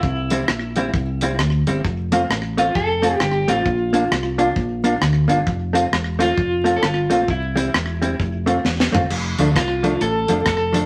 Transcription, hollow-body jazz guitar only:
X:1
M:4/4
L:1/16
Q:"Swing" 1/4=132
K:F
V:1 name="Hollow-body jazz guitar"
z2 [G,CE] z3 [G,CE] z3 [G,CE] z3 [G,CE] z | z2 [A,CF] z3 [A,CF] z3 [A,CF] z3 [A,CF] z | z2 [B,DF] z3 [B,DF] z3 [B,DF] z3 [B,DF] z | z2 [A,CF] z3 [A,CF] z3 [A,CF] z3 [A,CF] z |
z2 [G,CE] z3 [G,CE] z3 [A,CF] z3 [A,CF] z | z2 [F,A,D] z3 [F,A,D] z3 [F,A,D] z3 [F,A,D] z |]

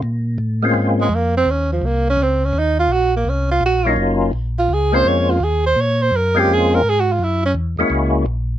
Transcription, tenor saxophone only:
X:1
M:4/4
L:1/8
Q:"Swing" 1/4=167
K:Bbm
V:1 name="Tenor saxophone"
z4 z A, B, C | D F, B, D C D E F | G B, D F G2 z2 | z F A c d F A c |
d c B =G A B (3A _G F | _F D z6 |]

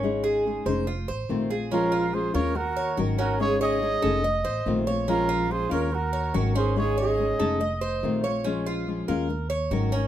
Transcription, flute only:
X:1
M:4/4
L:1/8
Q:1/4=142
K:Bbm
V:1 name="Flute"
z8 | F2 A B G2 z G | A A3 z4 | F2 A B G2 z A |
A A3 z4 | z8 |]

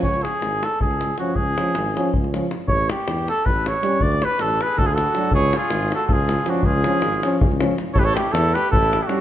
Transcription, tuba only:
X:1
M:7/8
L:1/8
Q:1/4=159
K:none
V:1 name="Tuba" clef=bass
^C,,2 ^G,,,2 C,,3 | ^C,,2 ^G,,,2 C,,3 | A,,,2 E,,2 A,,,3 | D,,2 A,,,2 D,,3 |
^C,,2 ^G,,,2 C,,3 | ^C,,2 ^G,,,2 C,,3 | A,,,2 E,,2 A,,,3 |]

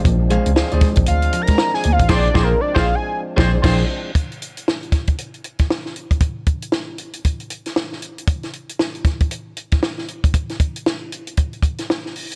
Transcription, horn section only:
X:1
M:4/4
L:1/16
Q:"Swing 16ths" 1/4=116
K:Bbmix
V:1 name="Horn section"
z16 | [CFAc]2 [CFAc]2 z [CFAc]2 z3 [CFAc]2 [CFAc]2 z2 | z16 | z16 |
z16 | z16 |]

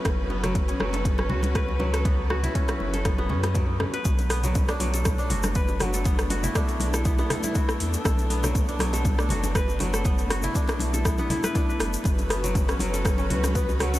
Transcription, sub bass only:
X:1
M:4/4
L:1/8
Q:"Swing 16ths" 1/4=120
K:Bm
V:1 name="Sub bass" clef=bass
F,,,3 F,,,2 C,,3- | C,,2 z F,,,2 F,,2 z | B,,,3 B,,,2 F,,,3- | F,,,2 z B,,,2 z2 E,, |
B,,,3 B,,,2 F,,,3- | F,,,2 z B,,,2 z2 F,,, | F,,,3 F,,,2 C,,3 |]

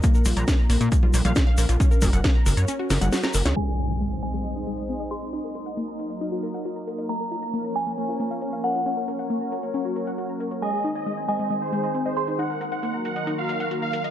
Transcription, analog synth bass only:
X:1
M:4/4
L:1/16
Q:1/4=136
K:Abmix
V:1 name="Analog synth bass" clef=bass
z2 B,,, B,,, z2 B,,, B,, z2 B,,, B,,, z2 B,,, B,,, | z2 G,,, G,,, z2 G,,, G,, z2 G,,, G,,, z2 G,,, D,, | z16 | z16 |
z16 | z16 | z16 | z16 |]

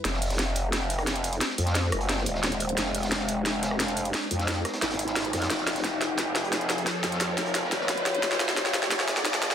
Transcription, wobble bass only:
X:1
M:4/4
L:1/8
Q:1/4=176
K:Fm
V:1 name="Wobble bass" clef=bass
F,,,8 | z F,,2 _G,,,2 E,,,3 | F,,,8 | z F,,2 z A,,,3 F,, |
F,,,8 | z F,,2 F,,,2 E,,,3 | F,,,8 |]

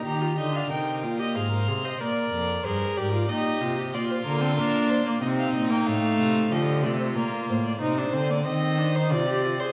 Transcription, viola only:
X:1
M:3/4
L:1/16
Q:1/4=93
K:Eb
V:1 name="Viola"
G F E D E2 F G A B A c | B4 A2 G F E2 F G | F2 B, C D3 B, C3 B, | =A,4 F,2 A,2 B,4 |
[K:Cm] E D C B, C2 D E F G F A |]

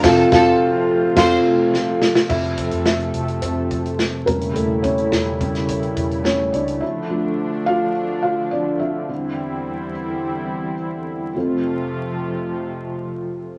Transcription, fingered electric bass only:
X:1
M:4/4
L:1/16
Q:1/4=106
K:F
V:1 name="Fingered electric bass" clef=bass
F,,,2 F,,,2 z4 F,,,2 z6 | F,,,3 F,,,3 F,,,2 F,,,6 E,,,2 | E,,,4 E,,,6 E,,,4 ^C,,2 | z16 |
z16 | z16 |]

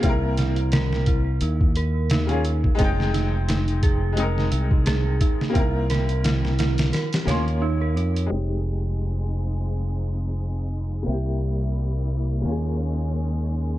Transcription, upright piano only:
X:1
M:4/4
L:1/16
Q:"Swing 16ths" 1/4=87
K:Fm
V:1 name="Upright piano"
[B,C=EB]8 z4 z [B,DFA] z2 | [A,CEg]8 [A,CEB]8 | [B,C=EB]8 z2 [B,DFc']2 z4 | [A,CEG]16 |
[B,C=EG]8 [B,DFA]8 |]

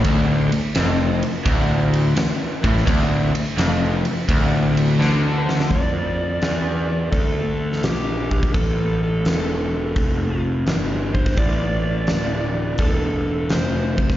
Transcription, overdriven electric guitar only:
X:1
M:4/4
L:1/8
Q:"Swing" 1/4=85
K:Dm
V:1 name="Overdriven electric guitar" clef=bass
D,, z F,, z D,,2 z A,, | D,, z F,, z D,,2 D,2 | z8 | z8 |
z8 |]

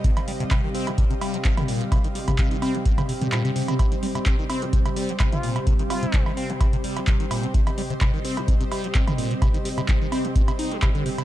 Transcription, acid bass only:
X:1
M:4/4
L:1/16
Q:"Swing 16ths" 1/4=128
K:Cm
V:1 name="Acid bass" clef=bass
C, E, G, C, C, E, C C, C, C, G, F, C, E, B,, C, | C, E, G, C, C, E, C C, C, C, C, C, B,, C, C, C | C, E, G, C, C, E, C C, C, C, G, F, C, E, B,, C, | C, E, G, C, C, E, C C, C, C, G, F, C, E, B,, C, |
C, E, G, C, C, E, C C, C, C, G, F, C, E, B,, C, | C, E, G, C, C, E, C C, C, C, E G, C, D, C, C, |]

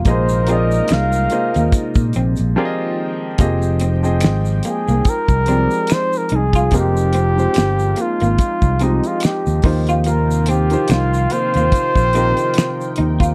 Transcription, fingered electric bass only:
X:1
M:4/4
L:1/16
Q:"Swing 16ths" 1/4=72
K:Fm
V:1 name="Fingered electric bass" clef=bass
B,,,4 C,,2 z E,, z B,, B,,, B,,, z4 | F,,,4 A,,,2 z C,, z C,,2 z3 C,,2 | F,,,4 G,,,2 z A,,, z C,,2 z2 E,, E,,2- | E,,4 C,,2 z E,, z B,,,2 z3 E,,2 |]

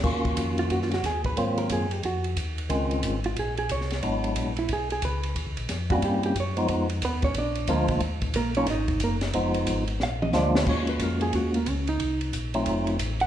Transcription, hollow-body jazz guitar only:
X:1
M:4/4
L:1/8
Q:"Swing" 1/4=181
K:Ebm
V:1 name="Hollow-body jazz guitar"
z3 F (3G F G A c | =c B A =G _G2 z2 | z3 F A A d2 | z3 =E ^G G =B2 |
z3 G =G G d2 | z2 [Cc] [Dd] [=D=d]2 [B,B] z | z2 [B,B] [Dd] [Ee]2 [B,B] z | z4 f e =d c |
d c B A G B, D E- | E z6 g |]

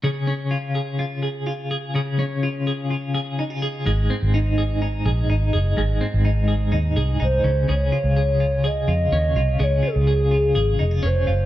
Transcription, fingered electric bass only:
X:1
M:4/4
L:1/16
Q:1/4=126
K:Db
V:1 name="Fingered electric bass" clef=bass
z16 | z16 | A,,,2 z A,,,6- A,,, B,,,2 A,,,2 G,,,2 | A,,,2 z A,,,4- A,,, E,,2 C,,2 C,,2 D,,2 |
D,,2 z D,,6- D,, F,,2 E,,2 C,,2 | D,,2 z D,,4- D,, A,,,2 F,,,2 F,,,2 G,,,2 |]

